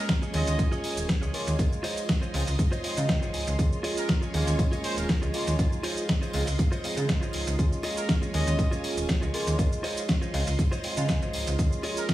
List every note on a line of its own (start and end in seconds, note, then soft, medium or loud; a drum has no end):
0.00 0.31 G#3 medium
0.00 0.31 A#3 medium
0.00 0.31 C#4 medium
0.00 0.32 F4 medium
0.00 9.55 F4 medium
0.00 1.57 C#5 medium
0.00 1.57 G#5 medium
0.09 kick loud
0.09 snare loud
0.09 closed hi-hat medium
0.09 tambourine soft
0.09 shaker medium
0.22 0.47 F4 medium
0.22 0.47 G#4 medium
0.22 0.47 C#5 medium
0.22 0.48 D#5 loud
0.22 shaker soft
0.33 0.43 D#2 loud
0.33 1.31 G#3 medium
0.33 1.31 A#3 medium
0.33 1.31 C#4 medium
0.33 1.31 F4 loud
0.33 0.72 D#5 medium
0.33 open hi-hat loud
0.33 tambourine medium
0.47 0.55 D#2 loud
0.47 closed hi-hat medium
0.47 tambourine soft
0.47 shaker medium
0.59 0.68 A#1 loud
0.59 kick loud
0.59 closed hi-hat medium
0.59 tambourine medium
0.59 shaker medium
0.71 0.97 F4 loud
0.71 0.97 G#4 loud
0.71 0.97 C#5 medium
0.71 0.97 D#5 loud
0.71 tambourine soft
0.71 shaker soft
0.84 open hi-hat loud
0.84 tambourine loud
0.97 1.05 D#1 medium
0.97 closed hi-hat medium
0.97 tambourine soft
0.97 shaker medium
1.09 kick loud
1.09 snare loud
1.09 closed hi-hat medium
1.09 tambourine medium
1.09 shaker medium
1.21 1.30 C#2 medium
1.21 1.53 F4 medium
1.21 1.53 G#4 medium
1.21 1.53 C#5 medium
1.21 1.53 D#5 medium
1.21 shaker soft
1.34 1.56 G#3 medium
1.34 1.56 A#3 medium
1.34 1.56 C#4 medium
1.34 1.56 F4 loud
1.34 open hi-hat loud
1.34 tambourine medium
1.47 1.55 D#2 loud
1.47 closed hi-hat medium
1.47 tambourine soft
1.47 shaker medium
1.59 1.68 C#2 loud
1.59 2.31 G#3 medium
1.59 2.31 D#4 medium
1.59 2.32 F4 loud
1.59 3.57 D#5 medium
1.59 3.57 C6 medium
1.59 kick loud
1.59 closed hi-hat medium
1.59 tambourine medium
1.59 shaker medium
1.73 shaker soft
1.83 2.03 F4 loud
1.83 2.03 C5 medium
1.83 2.03 C#5 loud
1.83 2.03 D#5 loud
1.83 open hi-hat loud
1.83 tambourine medium
1.97 closed hi-hat medium
1.97 tambourine soft
1.97 shaker medium
2.09 kick loud
2.09 snare loud
2.09 closed hi-hat medium
2.09 shaker medium
2.21 2.47 F4 medium
2.21 2.47 C5 medium
2.21 2.47 C#5 medium
2.21 2.47 D#5 loud
2.21 shaker soft
2.34 2.43 C#2 loud
2.34 2.42 G#3 medium
2.34 2.42 C4 medium
2.34 2.42 D#4 medium
2.34 2.42 F4 loud
2.34 open hi-hat loud
2.34 tambourine medium
2.47 2.55 C#2 loud
2.47 open hi-hat medium
2.47 tambourine soft
2.47 shaker medium
2.59 2.68 G#2 loud
2.59 kick loud
2.59 closed hi-hat medium
2.59 tambourine medium
2.59 shaker medium
2.71 2.97 F4 loud
2.71 2.97 C5 loud
2.71 2.97 C#5 loud
2.71 2.83 D#5 loud
2.71 tambourine soft
2.71 shaker soft
2.84 2.94 G#3 medium
2.84 2.94 C4 medium
2.84 2.94 D#4 medium
2.84 2.94 F4 medium
2.84 3.07 D#5 medium
2.84 open hi-hat loud
2.84 tambourine loud
2.97 3.05 C#3 medium
2.97 3.56 G#3 medium
2.97 3.56 D#4 medium
2.97 3.57 F4 loud
2.97 closed hi-hat medium
2.97 tambourine soft
2.97 shaker medium
3.09 3.32 G5 medium
3.09 kick loud
3.09 snare loud
3.09 closed hi-hat medium
3.09 tambourine medium
3.09 shaker medium
3.21 3.30 G#1 medium
3.21 3.53 F4 medium
3.21 3.53 C5 medium
3.21 3.53 C#5 medium
3.21 3.53 D#5 medium
3.21 shaker soft
3.34 3.45 C#2 soft
3.34 3.57 G#5 medium
3.34 open hi-hat loud
3.34 tambourine medium
3.47 3.55 C#2 loud
3.47 closed hi-hat medium
3.47 tambourine soft
3.47 shaker medium
3.58 3.68 D#2 loud
3.58 4.31 G#3 medium
3.58 4.31 A#3 medium
3.58 4.31 C#4 medium
3.58 4.32 F4 medium
3.58 5.57 C#5 medium
3.58 5.57 G#5 medium
3.58 kick loud
3.58 closed hi-hat medium
3.58 tambourine medium
3.58 shaker medium
3.73 shaker soft
3.83 4.03 F4 loud
3.83 4.03 G#4 medium
3.83 4.03 C#5 loud
3.83 4.03 D#5 loud
3.83 open hi-hat loud
3.83 tambourine medium
3.97 4.08 A#4 loud
3.97 closed hi-hat soft
3.97 tambourine soft
3.97 shaker medium
4.09 kick loud
4.09 snare loud
4.09 closed hi-hat medium
4.09 tambourine medium
4.09 shaker medium
4.21 4.47 F4 medium
4.21 4.47 G#4 medium
4.21 4.47 C#5 medium
4.21 4.47 D#5 medium
4.21 shaker soft
4.33 4.43 D#2 loud
4.33 5.31 G#3 loud
4.33 5.31 A#3 medium
4.33 5.31 C#4 medium
4.33 5.32 F4 loud
4.33 open hi-hat loud
4.33 tambourine medium
4.47 4.55 D#2 loud
4.47 closed hi-hat medium
4.47 tambourine soft
4.47 shaker medium
4.59 4.68 A#1 loud
4.59 kick loud
4.59 closed hi-hat medium
4.59 tambourine medium
4.59 shaker medium
4.72 4.97 F4 loud
4.72 4.97 G#4 medium
4.72 4.97 C#5 loud
4.72 4.98 D#5 loud
4.72 tambourine soft
4.72 shaker soft
4.84 4.95 C5 medium
4.84 open hi-hat loud
4.84 tambourine loud
4.97 5.05 D#1 medium
4.97 5.05 A#4 medium
4.97 closed hi-hat medium
4.97 tambourine soft
4.97 shaker medium
5.09 5.17 A#4 medium
5.09 kick loud
5.09 snare loud
5.09 closed hi-hat medium
5.09 tambourine medium
5.09 shaker medium
5.22 5.30 C#2 medium
5.22 5.53 F4 medium
5.22 5.53 G#4 medium
5.22 5.53 C#5 medium
5.22 5.53 D#5 medium
5.22 shaker soft
5.34 5.56 G#3 loud
5.34 5.56 A#3 medium
5.34 5.56 C#4 medium
5.34 5.56 F4 loud
5.34 open hi-hat loud
5.34 tambourine loud
5.47 5.55 D#2 loud
5.47 closed hi-hat medium
5.47 tambourine soft
5.47 shaker medium
5.58 5.68 C#2 loud
5.58 6.31 G#3 medium
5.58 6.31 D#4 medium
5.58 6.32 F4 loud
5.58 7.57 D#5 medium
5.58 7.57 C6 medium
5.58 kick loud
5.58 closed hi-hat medium
5.58 tambourine medium
5.58 shaker medium
5.72 shaker soft
5.83 6.03 F4 loud
5.83 6.03 C5 medium
5.83 6.03 C#5 medium
5.83 6.03 D#5 loud
5.83 open hi-hat loud
5.83 tambourine loud
5.97 closed hi-hat soft
5.97 tambourine soft
5.97 shaker medium
6.09 kick loud
6.09 snare loud
6.09 closed hi-hat medium
6.09 tambourine medium
6.09 shaker medium
6.21 6.47 F4 medium
6.21 6.47 C5 medium
6.21 6.47 C#5 medium
6.21 6.48 D#5 medium
6.21 tambourine soft
6.21 shaker soft
6.33 6.43 C#2 loud
6.33 6.41 G#3 medium
6.33 6.41 C4 medium
6.33 6.42 D#4 medium
6.33 6.42 F4 loud
6.33 open hi-hat loud
6.33 tambourine loud
6.47 6.55 C#2 loud
6.47 open hi-hat medium
6.47 tambourine soft
6.47 shaker medium
6.59 6.68 G#2 loud
6.59 kick loud
6.59 closed hi-hat medium
6.59 tambourine medium
6.59 shaker medium
6.72 6.97 F4 loud
6.72 6.97 C5 loud
6.72 6.97 C#5 medium
6.72 6.97 D#5 loud
6.72 closed hi-hat soft
6.72 tambourine soft
6.72 shaker soft
6.84 6.94 G#3 medium
6.84 6.94 C4 medium
6.84 6.94 D#4 medium
6.84 6.94 F4 medium
6.84 open hi-hat loud
6.84 tambourine loud
6.96 7.05 C#3 medium
6.96 7.56 G#3 medium
6.96 7.56 D#4 medium
6.96 7.56 F4 loud
6.96 closed hi-hat medium
6.96 tambourine soft
6.96 shaker medium
7.09 kick loud
7.09 snare loud
7.09 closed hi-hat medium
7.09 tambourine medium
7.09 shaker medium
7.21 7.30 G#1 medium
7.21 7.53 F4 medium
7.21 7.53 C5 medium
7.21 7.53 C#5 medium
7.21 7.53 D#5 medium
7.21 shaker soft
7.33 7.45 C#2 soft
7.33 open hi-hat loud
7.33 tambourine loud
7.47 7.55 C#2 loud
7.47 closed hi-hat medium
7.47 tambourine soft
7.47 shaker medium
7.58 7.68 D#2 loud
7.58 8.31 G#3 medium
7.58 8.31 A#3 medium
7.58 8.31 C#4 medium
7.58 8.32 F4 medium
7.58 9.57 C#5 medium
7.58 9.57 G#5 medium
7.58 kick loud
7.58 closed hi-hat medium
7.58 tambourine soft
7.58 shaker medium
7.73 shaker soft
7.83 8.03 F4 loud
7.83 8.03 G#4 loud
7.83 8.03 C#5 medium
7.83 8.03 D#5 loud
7.83 open hi-hat loud
7.83 tambourine medium
7.97 8.09 A#4 medium
7.97 closed hi-hat soft
7.97 tambourine soft
7.97 shaker medium
8.09 kick loud
8.09 snare loud
8.09 closed hi-hat medium
8.09 tambourine medium
8.09 shaker medium
8.22 8.47 F4 medium
8.22 8.47 G#4 medium
8.22 8.47 C#5 medium
8.22 8.47 D#5 loud
8.22 shaker soft
8.33 8.43 D#2 medium
8.33 9.31 G#3 loud
8.33 9.31 A#3 medium
8.33 9.31 C#4 medium
8.33 9.32 F4 loud
8.33 8.72 D#5 medium
8.33 open hi-hat loud
8.33 tambourine medium
8.47 8.55 D#2 loud
8.47 closed hi-hat medium
8.47 tambourine soft
8.47 shaker medium
8.59 8.68 A#1 loud
8.59 kick loud
8.59 closed hi-hat medium
8.59 tambourine medium
8.59 shaker medium
8.71 8.97 F4 loud
8.71 8.97 G#4 medium
8.71 8.97 C#5 loud
8.71 8.97 D#5 loud
8.71 tambourine soft
8.71 shaker soft
8.84 open hi-hat loud
8.84 tambourine loud
8.97 9.05 D#1 medium
8.97 closed hi-hat medium
8.97 tambourine soft
8.97 shaker medium
9.09 kick loud
9.09 snare loud
9.09 closed hi-hat medium
9.09 tambourine medium
9.09 shaker medium
9.21 9.30 C#2 medium
9.21 9.53 F4 medium
9.21 9.53 G#4 medium
9.21 9.53 C#5 medium
9.21 9.53 D#5 loud
9.21 shaker soft
9.34 9.56 G#3 loud
9.34 9.56 A#3 medium
9.34 9.56 C#4 medium
9.34 9.56 F4 loud
9.34 open hi-hat loud
9.34 tambourine medium
9.47 9.55 D#2 loud
9.47 closed hi-hat soft
9.47 tambourine soft
9.47 shaker medium
9.58 9.68 C#2 loud
9.58 10.31 G#3 medium
9.58 10.31 D#4 medium
9.58 12.14 F4 medium
9.58 10.32 F4 loud
9.58 11.57 D#5 medium
9.58 11.57 C6 medium
9.58 kick loud
9.58 closed hi-hat medium
9.58 tambourine soft
9.58 shaker medium
9.72 shaker soft
9.83 10.03 F4 loud
9.83 10.03 C5 medium
9.83 10.03 C#5 loud
9.83 10.03 D#5 loud
9.83 open hi-hat loud
9.83 tambourine medium
9.97 closed hi-hat medium
9.97 tambourine soft
9.97 shaker medium
10.09 kick loud
10.09 snare loud
10.09 closed hi-hat medium
10.09 shaker medium
10.21 10.47 F4 medium
10.21 10.47 C5 medium
10.21 10.47 C#5 medium
10.21 10.47 D#5 medium
10.21 shaker soft
10.34 10.43 C#2 medium
10.34 10.41 G#3 medium
10.34 10.41 C4 medium
10.34 10.42 D#4 medium
10.34 10.42 F4 loud
10.34 open hi-hat loud
10.34 tambourine loud
10.46 10.55 C#2 loud
10.46 open hi-hat medium
10.46 tambourine soft
10.46 shaker medium
10.59 10.68 G#2 loud
10.59 kick loud
10.59 closed hi-hat medium
10.59 tambourine medium
10.59 shaker medium
10.71 10.97 F4 loud
10.71 10.83 C5 loud
10.71 10.97 C#5 loud
10.71 10.98 D#5 loud
10.71 tambourine soft
10.71 shaker soft
10.84 10.94 G#3 medium
10.84 10.94 C4 medium
10.84 10.94 D#4 medium
10.84 10.94 F4 medium
10.84 10.96 C5 medium
10.84 open hi-hat loud
10.84 tambourine medium
10.97 11.05 C#3 medium
10.97 11.56 G#3 medium
10.97 11.56 D#4 medium
10.97 11.57 F4 loud
10.97 11.08 F5 medium
10.97 closed hi-hat medium
10.97 shaker medium
11.08 11.22 G#5 medium
11.08 kick loud
11.08 snare loud
11.08 closed hi-hat medium
11.08 tambourine soft
11.08 shaker medium
11.21 11.30 G#1 medium
11.21 11.53 F4 medium
11.21 11.53 C5 medium
11.21 11.53 C#5 medium
11.21 11.53 D#5 loud
11.21 shaker soft
11.33 11.45 C#2 soft
11.33 open hi-hat loud
11.33 tambourine loud
11.47 11.55 C#2 loud
11.47 closed hi-hat medium
11.47 tambourine soft
11.47 shaker medium
11.58 11.68 D#2 loud
11.58 12.14 G#3 medium
11.58 12.14 A#3 medium
11.58 12.14 C#4 medium
11.58 12.14 F4 loud
11.58 12.14 C#5 medium
11.58 12.14 G#5 medium
11.58 kick loud
11.58 closed hi-hat medium
11.58 tambourine soft
11.58 shaker medium
11.72 shaker soft
11.83 12.03 F4 loud
11.83 12.03 G#4 loud
11.83 12.03 C#5 loud
11.83 12.03 D#5 loud
11.83 open hi-hat medium
11.83 tambourine medium
11.97 12.08 A#4 medium
11.97 closed hi-hat medium
11.97 tambourine soft
11.97 shaker medium
12.09 kick loud
12.09 snare loud
12.09 closed hi-hat medium
12.09 shaker medium